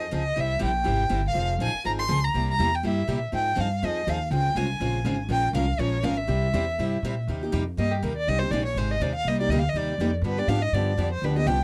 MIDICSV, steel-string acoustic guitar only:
0, 0, Header, 1, 2, 480
1, 0, Start_track
1, 0, Tempo, 246812
1, 708, Time_signature, 4, 2, 24, 8
1, 22632, End_track
2, 0, Start_track
2, 0, Title_t, "Steel-string acoustic guitar"
2, 0, Program_c, 0, 25
2, 220, Note_on_c, 0, 60, 79
2, 228, Note_on_c, 0, 53, 87
2, 236, Note_on_c, 0, 63, 87
2, 243, Note_on_c, 0, 68, 85
2, 420, Note_off_c, 0, 60, 0
2, 424, Note_off_c, 0, 53, 0
2, 428, Note_off_c, 0, 63, 0
2, 432, Note_off_c, 0, 68, 0
2, 692, Note_on_c, 0, 48, 63
2, 696, Note_on_c, 0, 55, 57
2, 712, Note_on_c, 0, 67, 69
2, 713, Note_on_c, 0, 64, 67
2, 720, Note_on_c, 0, 60, 66
2, 1048, Note_off_c, 0, 48, 0
2, 1050, Note_off_c, 0, 55, 0
2, 1058, Note_off_c, 0, 67, 0
2, 1059, Note_off_c, 0, 64, 0
2, 1062, Note_off_c, 0, 60, 0
2, 1146, Note_on_c, 0, 48, 80
2, 1153, Note_on_c, 0, 60, 88
2, 1155, Note_on_c, 0, 55, 92
2, 1158, Note_on_c, 0, 64, 87
2, 1167, Note_on_c, 0, 67, 96
2, 1363, Note_off_c, 0, 48, 0
2, 1367, Note_off_c, 0, 55, 0
2, 1367, Note_off_c, 0, 60, 0
2, 1369, Note_off_c, 0, 64, 0
2, 1374, Note_off_c, 0, 67, 0
2, 1631, Note_on_c, 0, 48, 78
2, 1640, Note_on_c, 0, 55, 71
2, 1645, Note_on_c, 0, 64, 75
2, 1654, Note_on_c, 0, 60, 68
2, 1659, Note_on_c, 0, 67, 85
2, 1997, Note_off_c, 0, 48, 0
2, 2002, Note_off_c, 0, 55, 0
2, 2005, Note_off_c, 0, 64, 0
2, 2009, Note_off_c, 0, 60, 0
2, 2011, Note_off_c, 0, 67, 0
2, 2124, Note_on_c, 0, 55, 90
2, 2130, Note_on_c, 0, 60, 91
2, 2131, Note_on_c, 0, 48, 86
2, 2132, Note_on_c, 0, 67, 92
2, 2137, Note_on_c, 0, 64, 90
2, 2332, Note_off_c, 0, 55, 0
2, 2335, Note_off_c, 0, 48, 0
2, 2335, Note_off_c, 0, 60, 0
2, 2336, Note_off_c, 0, 67, 0
2, 2338, Note_off_c, 0, 64, 0
2, 2603, Note_on_c, 0, 53, 62
2, 2607, Note_on_c, 0, 60, 66
2, 2618, Note_on_c, 0, 63, 69
2, 2636, Note_on_c, 0, 68, 68
2, 2963, Note_off_c, 0, 53, 0
2, 2965, Note_off_c, 0, 60, 0
2, 2970, Note_off_c, 0, 63, 0
2, 2979, Note_off_c, 0, 68, 0
2, 3113, Note_on_c, 0, 53, 81
2, 3116, Note_on_c, 0, 60, 87
2, 3132, Note_on_c, 0, 63, 87
2, 3145, Note_on_c, 0, 68, 104
2, 3306, Note_off_c, 0, 53, 0
2, 3308, Note_off_c, 0, 60, 0
2, 3315, Note_off_c, 0, 63, 0
2, 3322, Note_off_c, 0, 68, 0
2, 3583, Note_on_c, 0, 53, 67
2, 3592, Note_on_c, 0, 60, 74
2, 3604, Note_on_c, 0, 63, 79
2, 3607, Note_on_c, 0, 68, 81
2, 3933, Note_off_c, 0, 53, 0
2, 3937, Note_off_c, 0, 60, 0
2, 3943, Note_off_c, 0, 63, 0
2, 3945, Note_off_c, 0, 68, 0
2, 4051, Note_on_c, 0, 53, 82
2, 4065, Note_on_c, 0, 63, 88
2, 4066, Note_on_c, 0, 68, 104
2, 4067, Note_on_c, 0, 60, 80
2, 4255, Note_off_c, 0, 53, 0
2, 4262, Note_off_c, 0, 63, 0
2, 4262, Note_off_c, 0, 68, 0
2, 4263, Note_off_c, 0, 60, 0
2, 4552, Note_on_c, 0, 48, 65
2, 4554, Note_on_c, 0, 55, 63
2, 4572, Note_on_c, 0, 58, 65
2, 4578, Note_on_c, 0, 64, 72
2, 4582, Note_on_c, 0, 67, 80
2, 4897, Note_off_c, 0, 48, 0
2, 4898, Note_off_c, 0, 55, 0
2, 4907, Note_off_c, 0, 58, 0
2, 4910, Note_off_c, 0, 64, 0
2, 4912, Note_off_c, 0, 67, 0
2, 5029, Note_on_c, 0, 48, 85
2, 5043, Note_on_c, 0, 55, 79
2, 5050, Note_on_c, 0, 64, 97
2, 5056, Note_on_c, 0, 58, 89
2, 5056, Note_on_c, 0, 67, 96
2, 5224, Note_off_c, 0, 48, 0
2, 5231, Note_off_c, 0, 55, 0
2, 5234, Note_off_c, 0, 64, 0
2, 5237, Note_off_c, 0, 58, 0
2, 5237, Note_off_c, 0, 67, 0
2, 5505, Note_on_c, 0, 48, 68
2, 5510, Note_on_c, 0, 55, 69
2, 5530, Note_on_c, 0, 58, 69
2, 5530, Note_on_c, 0, 67, 78
2, 5533, Note_on_c, 0, 64, 73
2, 5854, Note_off_c, 0, 48, 0
2, 5856, Note_off_c, 0, 55, 0
2, 5866, Note_off_c, 0, 58, 0
2, 5866, Note_off_c, 0, 67, 0
2, 5868, Note_off_c, 0, 64, 0
2, 5982, Note_on_c, 0, 48, 83
2, 5999, Note_on_c, 0, 55, 90
2, 6001, Note_on_c, 0, 67, 95
2, 6003, Note_on_c, 0, 58, 83
2, 6010, Note_on_c, 0, 64, 85
2, 6180, Note_off_c, 0, 48, 0
2, 6189, Note_off_c, 0, 55, 0
2, 6190, Note_off_c, 0, 58, 0
2, 6190, Note_off_c, 0, 67, 0
2, 6194, Note_off_c, 0, 64, 0
2, 6457, Note_on_c, 0, 60, 61
2, 6465, Note_on_c, 0, 53, 55
2, 6473, Note_on_c, 0, 63, 67
2, 6479, Note_on_c, 0, 68, 67
2, 6810, Note_off_c, 0, 60, 0
2, 6813, Note_off_c, 0, 53, 0
2, 6818, Note_off_c, 0, 63, 0
2, 6821, Note_off_c, 0, 68, 0
2, 6912, Note_on_c, 0, 53, 88
2, 6923, Note_on_c, 0, 60, 89
2, 6938, Note_on_c, 0, 68, 96
2, 6939, Note_on_c, 0, 63, 84
2, 7125, Note_off_c, 0, 53, 0
2, 7131, Note_off_c, 0, 60, 0
2, 7138, Note_off_c, 0, 68, 0
2, 7139, Note_off_c, 0, 63, 0
2, 7440, Note_on_c, 0, 60, 68
2, 7448, Note_on_c, 0, 53, 73
2, 7455, Note_on_c, 0, 63, 76
2, 7466, Note_on_c, 0, 68, 80
2, 7781, Note_off_c, 0, 60, 0
2, 7785, Note_off_c, 0, 53, 0
2, 7789, Note_off_c, 0, 63, 0
2, 7794, Note_off_c, 0, 68, 0
2, 7920, Note_on_c, 0, 53, 80
2, 7931, Note_on_c, 0, 60, 90
2, 7931, Note_on_c, 0, 68, 86
2, 7937, Note_on_c, 0, 63, 96
2, 8110, Note_off_c, 0, 53, 0
2, 8115, Note_off_c, 0, 60, 0
2, 8115, Note_off_c, 0, 68, 0
2, 8118, Note_off_c, 0, 63, 0
2, 8378, Note_on_c, 0, 49, 59
2, 8389, Note_on_c, 0, 56, 61
2, 8398, Note_on_c, 0, 60, 65
2, 8403, Note_on_c, 0, 65, 65
2, 8416, Note_on_c, 0, 68, 70
2, 8731, Note_off_c, 0, 49, 0
2, 8736, Note_off_c, 0, 56, 0
2, 8741, Note_off_c, 0, 60, 0
2, 8743, Note_off_c, 0, 65, 0
2, 8749, Note_off_c, 0, 68, 0
2, 8863, Note_on_c, 0, 49, 88
2, 8873, Note_on_c, 0, 56, 91
2, 8881, Note_on_c, 0, 65, 98
2, 8886, Note_on_c, 0, 60, 88
2, 8889, Note_on_c, 0, 68, 95
2, 9061, Note_off_c, 0, 49, 0
2, 9066, Note_off_c, 0, 56, 0
2, 9070, Note_off_c, 0, 65, 0
2, 9073, Note_off_c, 0, 60, 0
2, 9074, Note_off_c, 0, 68, 0
2, 9342, Note_on_c, 0, 49, 68
2, 9347, Note_on_c, 0, 60, 72
2, 9354, Note_on_c, 0, 56, 67
2, 9359, Note_on_c, 0, 65, 69
2, 9364, Note_on_c, 0, 68, 83
2, 9693, Note_off_c, 0, 49, 0
2, 9695, Note_off_c, 0, 60, 0
2, 9699, Note_off_c, 0, 56, 0
2, 9701, Note_off_c, 0, 65, 0
2, 9704, Note_off_c, 0, 68, 0
2, 9817, Note_on_c, 0, 49, 92
2, 9832, Note_on_c, 0, 56, 81
2, 9837, Note_on_c, 0, 65, 89
2, 9843, Note_on_c, 0, 60, 91
2, 9850, Note_on_c, 0, 68, 92
2, 10018, Note_off_c, 0, 49, 0
2, 10026, Note_off_c, 0, 56, 0
2, 10029, Note_off_c, 0, 65, 0
2, 10031, Note_off_c, 0, 60, 0
2, 10035, Note_off_c, 0, 68, 0
2, 10279, Note_on_c, 0, 53, 66
2, 10296, Note_on_c, 0, 56, 64
2, 10301, Note_on_c, 0, 61, 66
2, 10307, Note_on_c, 0, 70, 72
2, 10309, Note_on_c, 0, 65, 73
2, 10642, Note_off_c, 0, 53, 0
2, 10650, Note_off_c, 0, 56, 0
2, 10653, Note_off_c, 0, 61, 0
2, 10656, Note_off_c, 0, 70, 0
2, 10657, Note_off_c, 0, 65, 0
2, 10779, Note_on_c, 0, 53, 92
2, 10785, Note_on_c, 0, 61, 98
2, 10787, Note_on_c, 0, 65, 99
2, 10788, Note_on_c, 0, 56, 97
2, 10789, Note_on_c, 0, 70, 104
2, 10980, Note_off_c, 0, 53, 0
2, 10983, Note_off_c, 0, 61, 0
2, 10984, Note_off_c, 0, 56, 0
2, 10984, Note_off_c, 0, 65, 0
2, 10985, Note_off_c, 0, 70, 0
2, 11260, Note_on_c, 0, 53, 73
2, 11261, Note_on_c, 0, 56, 74
2, 11268, Note_on_c, 0, 61, 70
2, 11273, Note_on_c, 0, 65, 80
2, 11273, Note_on_c, 0, 70, 78
2, 11613, Note_off_c, 0, 53, 0
2, 11613, Note_off_c, 0, 56, 0
2, 11617, Note_off_c, 0, 61, 0
2, 11619, Note_off_c, 0, 65, 0
2, 11619, Note_off_c, 0, 70, 0
2, 11719, Note_on_c, 0, 53, 87
2, 11734, Note_on_c, 0, 56, 92
2, 11740, Note_on_c, 0, 61, 88
2, 11742, Note_on_c, 0, 65, 99
2, 11750, Note_on_c, 0, 70, 97
2, 11931, Note_off_c, 0, 53, 0
2, 11938, Note_off_c, 0, 56, 0
2, 11941, Note_off_c, 0, 61, 0
2, 11942, Note_off_c, 0, 65, 0
2, 11946, Note_off_c, 0, 70, 0
2, 12203, Note_on_c, 0, 55, 72
2, 12218, Note_on_c, 0, 48, 65
2, 12224, Note_on_c, 0, 60, 64
2, 12227, Note_on_c, 0, 67, 68
2, 12233, Note_on_c, 0, 64, 71
2, 12565, Note_off_c, 0, 55, 0
2, 12572, Note_off_c, 0, 48, 0
2, 12576, Note_off_c, 0, 60, 0
2, 12577, Note_off_c, 0, 67, 0
2, 12580, Note_off_c, 0, 64, 0
2, 12710, Note_on_c, 0, 55, 94
2, 12711, Note_on_c, 0, 48, 85
2, 12711, Note_on_c, 0, 64, 92
2, 12723, Note_on_c, 0, 60, 96
2, 12724, Note_on_c, 0, 67, 95
2, 12907, Note_off_c, 0, 48, 0
2, 12907, Note_off_c, 0, 55, 0
2, 12907, Note_off_c, 0, 64, 0
2, 12913, Note_off_c, 0, 60, 0
2, 12913, Note_off_c, 0, 67, 0
2, 13204, Note_on_c, 0, 48, 69
2, 13214, Note_on_c, 0, 55, 63
2, 13216, Note_on_c, 0, 60, 68
2, 13217, Note_on_c, 0, 67, 83
2, 13226, Note_on_c, 0, 64, 78
2, 13546, Note_off_c, 0, 48, 0
2, 13551, Note_off_c, 0, 55, 0
2, 13552, Note_off_c, 0, 60, 0
2, 13552, Note_off_c, 0, 67, 0
2, 13557, Note_off_c, 0, 64, 0
2, 13701, Note_on_c, 0, 48, 89
2, 13703, Note_on_c, 0, 60, 95
2, 13704, Note_on_c, 0, 64, 87
2, 13716, Note_on_c, 0, 55, 88
2, 13723, Note_on_c, 0, 67, 88
2, 13882, Note_off_c, 0, 48, 0
2, 13884, Note_off_c, 0, 60, 0
2, 13884, Note_off_c, 0, 64, 0
2, 13890, Note_off_c, 0, 55, 0
2, 13894, Note_off_c, 0, 67, 0
2, 14164, Note_on_c, 0, 55, 61
2, 14165, Note_on_c, 0, 58, 61
2, 14166, Note_on_c, 0, 48, 59
2, 14180, Note_on_c, 0, 63, 68
2, 14188, Note_on_c, 0, 67, 67
2, 14418, Note_off_c, 0, 55, 0
2, 14418, Note_off_c, 0, 58, 0
2, 14419, Note_off_c, 0, 48, 0
2, 14421, Note_off_c, 0, 67, 0
2, 14426, Note_off_c, 0, 63, 0
2, 14444, Note_on_c, 0, 67, 54
2, 14464, Note_on_c, 0, 63, 51
2, 14475, Note_on_c, 0, 58, 45
2, 14611, Note_off_c, 0, 58, 0
2, 14615, Note_off_c, 0, 63, 0
2, 14625, Note_off_c, 0, 67, 0
2, 14629, Note_on_c, 0, 55, 91
2, 14630, Note_on_c, 0, 48, 82
2, 14634, Note_on_c, 0, 58, 91
2, 14639, Note_on_c, 0, 63, 95
2, 14648, Note_on_c, 0, 67, 94
2, 14827, Note_off_c, 0, 55, 0
2, 14828, Note_off_c, 0, 48, 0
2, 14830, Note_off_c, 0, 58, 0
2, 14832, Note_off_c, 0, 63, 0
2, 14837, Note_off_c, 0, 67, 0
2, 15117, Note_on_c, 0, 48, 65
2, 15133, Note_on_c, 0, 63, 73
2, 15136, Note_on_c, 0, 55, 73
2, 15137, Note_on_c, 0, 58, 73
2, 15150, Note_on_c, 0, 67, 69
2, 15463, Note_off_c, 0, 48, 0
2, 15472, Note_off_c, 0, 63, 0
2, 15473, Note_off_c, 0, 55, 0
2, 15473, Note_off_c, 0, 58, 0
2, 15480, Note_off_c, 0, 67, 0
2, 15607, Note_on_c, 0, 55, 83
2, 15609, Note_on_c, 0, 48, 75
2, 15620, Note_on_c, 0, 63, 83
2, 15627, Note_on_c, 0, 58, 75
2, 15628, Note_on_c, 0, 67, 84
2, 15797, Note_off_c, 0, 55, 0
2, 15798, Note_off_c, 0, 48, 0
2, 15803, Note_off_c, 0, 63, 0
2, 15807, Note_off_c, 0, 58, 0
2, 15807, Note_off_c, 0, 67, 0
2, 16087, Note_on_c, 0, 48, 56
2, 16105, Note_on_c, 0, 56, 63
2, 16110, Note_on_c, 0, 60, 68
2, 16112, Note_on_c, 0, 63, 72
2, 16124, Note_on_c, 0, 67, 73
2, 16340, Note_off_c, 0, 48, 0
2, 16349, Note_off_c, 0, 56, 0
2, 16352, Note_off_c, 0, 60, 0
2, 16353, Note_off_c, 0, 63, 0
2, 16359, Note_off_c, 0, 67, 0
2, 16381, Note_on_c, 0, 67, 59
2, 16401, Note_on_c, 0, 63, 50
2, 16407, Note_on_c, 0, 60, 49
2, 16558, Note_off_c, 0, 60, 0
2, 16563, Note_on_c, 0, 48, 83
2, 16564, Note_off_c, 0, 67, 0
2, 16574, Note_off_c, 0, 63, 0
2, 16582, Note_on_c, 0, 60, 87
2, 16587, Note_on_c, 0, 56, 91
2, 16591, Note_on_c, 0, 67, 84
2, 16599, Note_on_c, 0, 63, 90
2, 16755, Note_off_c, 0, 48, 0
2, 16764, Note_off_c, 0, 60, 0
2, 16767, Note_off_c, 0, 56, 0
2, 16769, Note_off_c, 0, 67, 0
2, 16773, Note_off_c, 0, 63, 0
2, 17059, Note_on_c, 0, 48, 73
2, 17063, Note_on_c, 0, 56, 76
2, 17070, Note_on_c, 0, 60, 73
2, 17073, Note_on_c, 0, 63, 83
2, 17076, Note_on_c, 0, 67, 73
2, 17395, Note_off_c, 0, 48, 0
2, 17397, Note_off_c, 0, 56, 0
2, 17401, Note_off_c, 0, 60, 0
2, 17402, Note_off_c, 0, 63, 0
2, 17404, Note_off_c, 0, 67, 0
2, 17521, Note_on_c, 0, 48, 80
2, 17528, Note_on_c, 0, 56, 81
2, 17530, Note_on_c, 0, 60, 84
2, 17532, Note_on_c, 0, 63, 94
2, 17539, Note_on_c, 0, 67, 86
2, 17714, Note_off_c, 0, 48, 0
2, 17718, Note_off_c, 0, 56, 0
2, 17718, Note_off_c, 0, 60, 0
2, 17719, Note_off_c, 0, 63, 0
2, 17723, Note_off_c, 0, 67, 0
2, 18030, Note_on_c, 0, 48, 69
2, 18042, Note_on_c, 0, 55, 55
2, 18045, Note_on_c, 0, 63, 61
2, 18052, Note_on_c, 0, 58, 58
2, 18057, Note_on_c, 0, 67, 72
2, 18269, Note_off_c, 0, 67, 0
2, 18272, Note_off_c, 0, 48, 0
2, 18278, Note_off_c, 0, 55, 0
2, 18279, Note_off_c, 0, 63, 0
2, 18283, Note_off_c, 0, 58, 0
2, 18292, Note_on_c, 0, 67, 66
2, 18308, Note_on_c, 0, 63, 53
2, 18323, Note_on_c, 0, 58, 47
2, 18480, Note_off_c, 0, 67, 0
2, 18488, Note_off_c, 0, 63, 0
2, 18495, Note_off_c, 0, 58, 0
2, 18506, Note_on_c, 0, 48, 85
2, 18507, Note_on_c, 0, 55, 90
2, 18519, Note_on_c, 0, 58, 82
2, 18523, Note_on_c, 0, 63, 87
2, 18525, Note_on_c, 0, 67, 106
2, 18687, Note_off_c, 0, 48, 0
2, 18687, Note_off_c, 0, 55, 0
2, 18693, Note_off_c, 0, 58, 0
2, 18695, Note_off_c, 0, 63, 0
2, 18696, Note_off_c, 0, 67, 0
2, 18969, Note_on_c, 0, 48, 72
2, 18976, Note_on_c, 0, 55, 70
2, 18976, Note_on_c, 0, 63, 73
2, 18986, Note_on_c, 0, 67, 75
2, 18989, Note_on_c, 0, 58, 76
2, 19310, Note_off_c, 0, 48, 0
2, 19313, Note_off_c, 0, 55, 0
2, 19313, Note_off_c, 0, 63, 0
2, 19318, Note_off_c, 0, 67, 0
2, 19320, Note_off_c, 0, 58, 0
2, 19442, Note_on_c, 0, 48, 74
2, 19456, Note_on_c, 0, 55, 92
2, 19464, Note_on_c, 0, 58, 91
2, 19465, Note_on_c, 0, 67, 82
2, 19471, Note_on_c, 0, 63, 93
2, 19634, Note_off_c, 0, 48, 0
2, 19642, Note_off_c, 0, 55, 0
2, 19645, Note_off_c, 0, 58, 0
2, 19646, Note_off_c, 0, 67, 0
2, 19649, Note_off_c, 0, 63, 0
2, 19917, Note_on_c, 0, 53, 63
2, 19924, Note_on_c, 0, 50, 66
2, 19929, Note_on_c, 0, 59, 70
2, 19930, Note_on_c, 0, 67, 67
2, 19933, Note_on_c, 0, 62, 69
2, 20155, Note_off_c, 0, 67, 0
2, 20175, Note_off_c, 0, 53, 0
2, 20178, Note_off_c, 0, 50, 0
2, 20178, Note_on_c, 0, 67, 66
2, 20181, Note_off_c, 0, 59, 0
2, 20183, Note_off_c, 0, 62, 0
2, 20213, Note_on_c, 0, 62, 54
2, 20220, Note_on_c, 0, 59, 46
2, 20371, Note_off_c, 0, 59, 0
2, 20378, Note_off_c, 0, 67, 0
2, 20379, Note_off_c, 0, 62, 0
2, 20391, Note_on_c, 0, 50, 89
2, 20391, Note_on_c, 0, 53, 87
2, 20394, Note_on_c, 0, 59, 93
2, 20402, Note_on_c, 0, 67, 96
2, 20403, Note_on_c, 0, 62, 93
2, 20588, Note_off_c, 0, 50, 0
2, 20588, Note_off_c, 0, 53, 0
2, 20590, Note_off_c, 0, 59, 0
2, 20594, Note_off_c, 0, 62, 0
2, 20594, Note_off_c, 0, 67, 0
2, 20893, Note_on_c, 0, 50, 72
2, 20893, Note_on_c, 0, 62, 73
2, 20894, Note_on_c, 0, 53, 78
2, 20896, Note_on_c, 0, 59, 69
2, 20896, Note_on_c, 0, 67, 77
2, 21231, Note_off_c, 0, 50, 0
2, 21231, Note_off_c, 0, 62, 0
2, 21232, Note_off_c, 0, 53, 0
2, 21233, Note_off_c, 0, 59, 0
2, 21233, Note_off_c, 0, 67, 0
2, 21343, Note_on_c, 0, 53, 78
2, 21353, Note_on_c, 0, 50, 80
2, 21362, Note_on_c, 0, 62, 88
2, 21363, Note_on_c, 0, 59, 85
2, 21364, Note_on_c, 0, 67, 90
2, 21544, Note_off_c, 0, 53, 0
2, 21549, Note_off_c, 0, 50, 0
2, 21554, Note_off_c, 0, 59, 0
2, 21554, Note_off_c, 0, 62, 0
2, 21555, Note_off_c, 0, 67, 0
2, 21843, Note_on_c, 0, 50, 59
2, 21854, Note_on_c, 0, 59, 65
2, 21854, Note_on_c, 0, 62, 68
2, 21855, Note_on_c, 0, 53, 63
2, 21859, Note_on_c, 0, 67, 72
2, 22076, Note_off_c, 0, 67, 0
2, 22094, Note_off_c, 0, 62, 0
2, 22097, Note_off_c, 0, 50, 0
2, 22099, Note_on_c, 0, 67, 65
2, 22103, Note_off_c, 0, 53, 0
2, 22103, Note_off_c, 0, 59, 0
2, 22117, Note_on_c, 0, 62, 53
2, 22133, Note_on_c, 0, 59, 46
2, 22292, Note_off_c, 0, 59, 0
2, 22302, Note_off_c, 0, 62, 0
2, 22302, Note_off_c, 0, 67, 0
2, 22302, Note_on_c, 0, 53, 91
2, 22312, Note_on_c, 0, 50, 80
2, 22315, Note_on_c, 0, 59, 82
2, 22326, Note_on_c, 0, 62, 103
2, 22326, Note_on_c, 0, 67, 94
2, 22503, Note_off_c, 0, 53, 0
2, 22508, Note_off_c, 0, 50, 0
2, 22510, Note_off_c, 0, 59, 0
2, 22515, Note_off_c, 0, 62, 0
2, 22515, Note_off_c, 0, 67, 0
2, 22632, End_track
0, 0, End_of_file